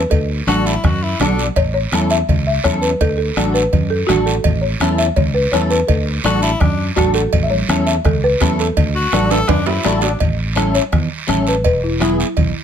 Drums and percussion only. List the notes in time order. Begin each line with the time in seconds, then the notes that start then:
0.11 bombo low, cowbell, long guiro
0.48 bombo rim, high conga, short guiro
0.66 short guiro
0.84 bombo low, bombo rim, cowbell, low conga, long guiro
1.20 bombo rim, high conga, low conga, low timbale, short guiro
1.39 short guiro
1.56 bombo low, cowbell, long guiro
1.92 bombo rim, high conga, short guiro
2.10 short guiro
2.29 bombo low, cowbell, low conga, long guiro
2.64 bombo low, bombo rim, high conga, short guiro
2.82 short guiro
3.01 bombo low, cowbell, long guiro
3.37 bombo rim, high conga, short guiro
3.55 short guiro
3.73 bombo low, cowbell, low conga, long guiro
4.09 bombo rim, high conga, low conga, short guiro
4.27 short guiro
4.44 bombo low, cowbell, low conga, long guiro
4.80 bombo rim, high conga, short guiro
4.98 short guiro
5.16 bombo low, cowbell, low conga, long guiro
5.53 bombo rim, high conga, short guiro
5.71 short guiro
5.88 bombo low, cowbell, long guiro
6.24 bombo rim, high conga, short guiro
6.42 short guiro
6.60 bombo low, bombo rim, cowbell, low conga, long guiro
6.97 bombo low, bombo rim, high conga, short guiro
7.14 short guiro
7.33 bombo low, cowbell, low conga, long guiro
7.51 high conga
7.69 bombo rim, high conga, short guiro
7.87 short guiro
8.05 bombo low, bombo rim, cowbell, low conga, long guiro
8.41 bombo low, bombo rim, high conga, low timbale, short guiro
8.59 short guiro
8.77 bombo low, cowbell, low conga, long guiro
9.12 bombo rim, high conga, high timbale, short guiro
9.31 high timbale, short guiro
9.47 bombo low, bombo rim, cowbell, low conga, high timbale, long guiro
9.67 low timbale
9.84 bombo rim, high conga, low timbale, short guiro
10.01 low timbale, short guiro
10.19 bombo low, cowbell, low conga, long guiro
10.56 bombo rim, high conga, short guiro
10.74 short guiro
10.92 bombo low, bombo rim, cowbell, low conga, long guiro
11.28 bombo rim, high conga, low conga, short guiro
11.47 short guiro
11.64 bombo low, cowbell, long guiro
12.01 bombo rim, high conga, short guiro
12.20 short guiro
12.37 bombo low, cowbell, low conga, long guiro